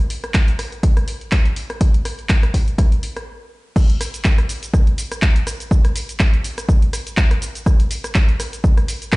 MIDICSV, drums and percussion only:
0, 0, Header, 1, 2, 480
1, 0, Start_track
1, 0, Tempo, 487805
1, 1781, Time_signature, 4, 2, 24, 8
1, 9018, End_track
2, 0, Start_track
2, 0, Title_t, "Drums"
2, 100, Note_on_c, 9, 46, 95
2, 198, Note_off_c, 9, 46, 0
2, 233, Note_on_c, 9, 37, 59
2, 233, Note_on_c, 9, 42, 40
2, 332, Note_off_c, 9, 37, 0
2, 332, Note_off_c, 9, 42, 0
2, 335, Note_on_c, 9, 39, 110
2, 339, Note_on_c, 9, 36, 110
2, 340, Note_on_c, 9, 42, 91
2, 434, Note_off_c, 9, 39, 0
2, 438, Note_off_c, 9, 36, 0
2, 438, Note_off_c, 9, 42, 0
2, 473, Note_on_c, 9, 42, 40
2, 571, Note_off_c, 9, 42, 0
2, 581, Note_on_c, 9, 37, 59
2, 581, Note_on_c, 9, 46, 85
2, 679, Note_off_c, 9, 37, 0
2, 679, Note_off_c, 9, 46, 0
2, 713, Note_on_c, 9, 42, 40
2, 811, Note_off_c, 9, 42, 0
2, 819, Note_on_c, 9, 36, 116
2, 820, Note_on_c, 9, 42, 98
2, 918, Note_off_c, 9, 36, 0
2, 919, Note_off_c, 9, 42, 0
2, 953, Note_on_c, 9, 37, 62
2, 953, Note_on_c, 9, 42, 41
2, 1051, Note_off_c, 9, 37, 0
2, 1051, Note_off_c, 9, 42, 0
2, 1060, Note_on_c, 9, 46, 92
2, 1158, Note_off_c, 9, 46, 0
2, 1193, Note_on_c, 9, 42, 39
2, 1292, Note_off_c, 9, 42, 0
2, 1295, Note_on_c, 9, 39, 117
2, 1299, Note_on_c, 9, 36, 110
2, 1300, Note_on_c, 9, 37, 60
2, 1300, Note_on_c, 9, 42, 94
2, 1394, Note_off_c, 9, 39, 0
2, 1398, Note_off_c, 9, 36, 0
2, 1398, Note_off_c, 9, 37, 0
2, 1398, Note_off_c, 9, 42, 0
2, 1431, Note_on_c, 9, 42, 40
2, 1530, Note_off_c, 9, 42, 0
2, 1539, Note_on_c, 9, 46, 86
2, 1637, Note_off_c, 9, 46, 0
2, 1672, Note_on_c, 9, 37, 61
2, 1672, Note_on_c, 9, 42, 40
2, 1771, Note_off_c, 9, 37, 0
2, 1771, Note_off_c, 9, 42, 0
2, 1779, Note_on_c, 9, 36, 115
2, 1779, Note_on_c, 9, 42, 100
2, 1877, Note_off_c, 9, 36, 0
2, 1877, Note_off_c, 9, 42, 0
2, 1913, Note_on_c, 9, 42, 43
2, 2011, Note_off_c, 9, 42, 0
2, 2020, Note_on_c, 9, 37, 57
2, 2020, Note_on_c, 9, 46, 97
2, 2118, Note_off_c, 9, 37, 0
2, 2118, Note_off_c, 9, 46, 0
2, 2152, Note_on_c, 9, 42, 41
2, 2251, Note_off_c, 9, 42, 0
2, 2255, Note_on_c, 9, 39, 117
2, 2259, Note_on_c, 9, 36, 113
2, 2260, Note_on_c, 9, 42, 95
2, 2354, Note_off_c, 9, 39, 0
2, 2358, Note_off_c, 9, 36, 0
2, 2358, Note_off_c, 9, 42, 0
2, 2393, Note_on_c, 9, 37, 58
2, 2393, Note_on_c, 9, 42, 42
2, 2492, Note_off_c, 9, 37, 0
2, 2492, Note_off_c, 9, 42, 0
2, 2499, Note_on_c, 9, 36, 58
2, 2501, Note_on_c, 9, 46, 88
2, 2597, Note_off_c, 9, 36, 0
2, 2599, Note_off_c, 9, 46, 0
2, 2634, Note_on_c, 9, 42, 40
2, 2732, Note_off_c, 9, 42, 0
2, 2739, Note_on_c, 9, 36, 118
2, 2742, Note_on_c, 9, 37, 58
2, 2742, Note_on_c, 9, 42, 98
2, 2838, Note_off_c, 9, 36, 0
2, 2840, Note_off_c, 9, 37, 0
2, 2840, Note_off_c, 9, 42, 0
2, 2874, Note_on_c, 9, 42, 41
2, 2973, Note_off_c, 9, 42, 0
2, 2982, Note_on_c, 9, 46, 97
2, 3080, Note_off_c, 9, 46, 0
2, 3114, Note_on_c, 9, 37, 58
2, 3114, Note_on_c, 9, 42, 42
2, 3213, Note_off_c, 9, 37, 0
2, 3213, Note_off_c, 9, 42, 0
2, 3699, Note_on_c, 9, 36, 125
2, 3703, Note_on_c, 9, 49, 106
2, 3709, Note_on_c, 9, 82, 36
2, 3798, Note_off_c, 9, 36, 0
2, 3802, Note_off_c, 9, 49, 0
2, 3807, Note_off_c, 9, 82, 0
2, 3834, Note_on_c, 9, 42, 57
2, 3933, Note_off_c, 9, 42, 0
2, 3942, Note_on_c, 9, 37, 57
2, 3942, Note_on_c, 9, 46, 103
2, 3948, Note_on_c, 9, 82, 78
2, 4041, Note_off_c, 9, 37, 0
2, 4041, Note_off_c, 9, 46, 0
2, 4046, Note_off_c, 9, 82, 0
2, 4073, Note_on_c, 9, 42, 71
2, 4079, Note_on_c, 9, 82, 44
2, 4172, Note_off_c, 9, 42, 0
2, 4176, Note_on_c, 9, 39, 123
2, 4177, Note_off_c, 9, 82, 0
2, 4179, Note_on_c, 9, 36, 120
2, 4186, Note_on_c, 9, 82, 33
2, 4274, Note_off_c, 9, 39, 0
2, 4278, Note_off_c, 9, 36, 0
2, 4285, Note_off_c, 9, 82, 0
2, 4313, Note_on_c, 9, 37, 57
2, 4313, Note_on_c, 9, 42, 38
2, 4411, Note_off_c, 9, 37, 0
2, 4411, Note_off_c, 9, 42, 0
2, 4420, Note_on_c, 9, 46, 93
2, 4426, Note_on_c, 9, 82, 78
2, 4519, Note_off_c, 9, 46, 0
2, 4524, Note_off_c, 9, 82, 0
2, 4553, Note_on_c, 9, 42, 69
2, 4558, Note_on_c, 9, 82, 45
2, 4651, Note_off_c, 9, 42, 0
2, 4657, Note_off_c, 9, 82, 0
2, 4660, Note_on_c, 9, 36, 123
2, 4661, Note_on_c, 9, 37, 58
2, 4667, Note_on_c, 9, 82, 35
2, 4758, Note_off_c, 9, 36, 0
2, 4760, Note_off_c, 9, 37, 0
2, 4765, Note_off_c, 9, 82, 0
2, 4794, Note_on_c, 9, 42, 39
2, 4892, Note_off_c, 9, 42, 0
2, 4901, Note_on_c, 9, 46, 100
2, 4907, Note_on_c, 9, 82, 77
2, 4999, Note_off_c, 9, 46, 0
2, 5005, Note_off_c, 9, 82, 0
2, 5033, Note_on_c, 9, 37, 59
2, 5033, Note_on_c, 9, 42, 69
2, 5039, Note_on_c, 9, 82, 45
2, 5132, Note_off_c, 9, 37, 0
2, 5132, Note_off_c, 9, 42, 0
2, 5137, Note_off_c, 9, 82, 0
2, 5137, Note_on_c, 9, 39, 127
2, 5140, Note_on_c, 9, 36, 118
2, 5147, Note_on_c, 9, 82, 35
2, 5235, Note_off_c, 9, 39, 0
2, 5238, Note_off_c, 9, 36, 0
2, 5246, Note_off_c, 9, 82, 0
2, 5273, Note_on_c, 9, 42, 54
2, 5371, Note_off_c, 9, 42, 0
2, 5381, Note_on_c, 9, 37, 57
2, 5381, Note_on_c, 9, 46, 93
2, 5386, Note_on_c, 9, 82, 77
2, 5479, Note_off_c, 9, 37, 0
2, 5479, Note_off_c, 9, 46, 0
2, 5485, Note_off_c, 9, 82, 0
2, 5513, Note_on_c, 9, 42, 68
2, 5519, Note_on_c, 9, 82, 45
2, 5612, Note_off_c, 9, 42, 0
2, 5617, Note_off_c, 9, 82, 0
2, 5620, Note_on_c, 9, 36, 125
2, 5627, Note_on_c, 9, 82, 33
2, 5718, Note_off_c, 9, 36, 0
2, 5725, Note_off_c, 9, 82, 0
2, 5753, Note_on_c, 9, 37, 57
2, 5753, Note_on_c, 9, 42, 54
2, 5852, Note_off_c, 9, 37, 0
2, 5852, Note_off_c, 9, 42, 0
2, 5861, Note_on_c, 9, 46, 108
2, 5867, Note_on_c, 9, 82, 74
2, 5959, Note_off_c, 9, 46, 0
2, 5965, Note_off_c, 9, 82, 0
2, 5994, Note_on_c, 9, 42, 68
2, 5999, Note_on_c, 9, 82, 43
2, 6092, Note_off_c, 9, 42, 0
2, 6097, Note_on_c, 9, 39, 121
2, 6098, Note_off_c, 9, 82, 0
2, 6100, Note_on_c, 9, 36, 122
2, 6102, Note_on_c, 9, 37, 56
2, 6107, Note_on_c, 9, 82, 32
2, 6195, Note_off_c, 9, 39, 0
2, 6198, Note_off_c, 9, 36, 0
2, 6200, Note_off_c, 9, 37, 0
2, 6206, Note_off_c, 9, 82, 0
2, 6235, Note_on_c, 9, 42, 37
2, 6333, Note_off_c, 9, 42, 0
2, 6342, Note_on_c, 9, 46, 96
2, 6347, Note_on_c, 9, 82, 74
2, 6440, Note_off_c, 9, 46, 0
2, 6445, Note_off_c, 9, 82, 0
2, 6473, Note_on_c, 9, 37, 55
2, 6473, Note_on_c, 9, 42, 66
2, 6479, Note_on_c, 9, 82, 43
2, 6572, Note_off_c, 9, 37, 0
2, 6572, Note_off_c, 9, 42, 0
2, 6577, Note_off_c, 9, 82, 0
2, 6580, Note_on_c, 9, 36, 127
2, 6587, Note_on_c, 9, 82, 33
2, 6678, Note_off_c, 9, 36, 0
2, 6685, Note_off_c, 9, 82, 0
2, 6714, Note_on_c, 9, 42, 39
2, 6813, Note_off_c, 9, 42, 0
2, 6821, Note_on_c, 9, 37, 53
2, 6821, Note_on_c, 9, 46, 105
2, 6827, Note_on_c, 9, 82, 76
2, 6920, Note_off_c, 9, 37, 0
2, 6920, Note_off_c, 9, 46, 0
2, 6925, Note_off_c, 9, 82, 0
2, 6954, Note_on_c, 9, 42, 69
2, 6959, Note_on_c, 9, 82, 44
2, 7052, Note_off_c, 9, 42, 0
2, 7056, Note_on_c, 9, 39, 127
2, 7058, Note_off_c, 9, 82, 0
2, 7060, Note_on_c, 9, 36, 123
2, 7067, Note_on_c, 9, 82, 33
2, 7155, Note_off_c, 9, 39, 0
2, 7158, Note_off_c, 9, 36, 0
2, 7165, Note_off_c, 9, 82, 0
2, 7193, Note_on_c, 9, 37, 56
2, 7193, Note_on_c, 9, 42, 54
2, 7292, Note_off_c, 9, 37, 0
2, 7292, Note_off_c, 9, 42, 0
2, 7301, Note_on_c, 9, 46, 93
2, 7306, Note_on_c, 9, 82, 77
2, 7399, Note_off_c, 9, 46, 0
2, 7405, Note_off_c, 9, 82, 0
2, 7433, Note_on_c, 9, 42, 69
2, 7438, Note_on_c, 9, 82, 44
2, 7531, Note_off_c, 9, 42, 0
2, 7537, Note_off_c, 9, 82, 0
2, 7540, Note_on_c, 9, 36, 127
2, 7540, Note_on_c, 9, 37, 59
2, 7545, Note_on_c, 9, 82, 33
2, 7638, Note_off_c, 9, 36, 0
2, 7638, Note_off_c, 9, 37, 0
2, 7644, Note_off_c, 9, 82, 0
2, 7673, Note_on_c, 9, 42, 53
2, 7771, Note_off_c, 9, 42, 0
2, 7780, Note_on_c, 9, 46, 111
2, 7786, Note_on_c, 9, 82, 75
2, 7879, Note_off_c, 9, 46, 0
2, 7884, Note_off_c, 9, 82, 0
2, 7913, Note_on_c, 9, 37, 59
2, 7913, Note_on_c, 9, 42, 65
2, 7919, Note_on_c, 9, 82, 42
2, 8012, Note_off_c, 9, 37, 0
2, 8012, Note_off_c, 9, 42, 0
2, 8016, Note_on_c, 9, 39, 122
2, 8017, Note_off_c, 9, 82, 0
2, 8020, Note_on_c, 9, 36, 122
2, 8026, Note_on_c, 9, 82, 32
2, 8114, Note_off_c, 9, 39, 0
2, 8118, Note_off_c, 9, 36, 0
2, 8125, Note_off_c, 9, 82, 0
2, 8153, Note_on_c, 9, 42, 37
2, 8252, Note_off_c, 9, 42, 0
2, 8262, Note_on_c, 9, 37, 57
2, 8262, Note_on_c, 9, 46, 97
2, 8268, Note_on_c, 9, 82, 76
2, 8361, Note_off_c, 9, 37, 0
2, 8361, Note_off_c, 9, 46, 0
2, 8366, Note_off_c, 9, 82, 0
2, 8394, Note_on_c, 9, 42, 64
2, 8400, Note_on_c, 9, 82, 42
2, 8493, Note_off_c, 9, 42, 0
2, 8498, Note_off_c, 9, 82, 0
2, 8501, Note_on_c, 9, 36, 126
2, 8507, Note_on_c, 9, 82, 34
2, 8599, Note_off_c, 9, 36, 0
2, 8605, Note_off_c, 9, 82, 0
2, 8634, Note_on_c, 9, 37, 59
2, 8634, Note_on_c, 9, 42, 36
2, 8733, Note_off_c, 9, 37, 0
2, 8733, Note_off_c, 9, 42, 0
2, 8742, Note_on_c, 9, 46, 108
2, 8747, Note_on_c, 9, 82, 71
2, 8840, Note_off_c, 9, 46, 0
2, 8846, Note_off_c, 9, 82, 0
2, 8875, Note_on_c, 9, 42, 66
2, 8880, Note_on_c, 9, 82, 45
2, 8973, Note_off_c, 9, 42, 0
2, 8977, Note_on_c, 9, 39, 122
2, 8979, Note_off_c, 9, 82, 0
2, 8981, Note_on_c, 9, 36, 126
2, 8982, Note_on_c, 9, 37, 62
2, 8987, Note_on_c, 9, 82, 34
2, 9018, Note_off_c, 9, 36, 0
2, 9018, Note_off_c, 9, 37, 0
2, 9018, Note_off_c, 9, 39, 0
2, 9018, Note_off_c, 9, 82, 0
2, 9018, End_track
0, 0, End_of_file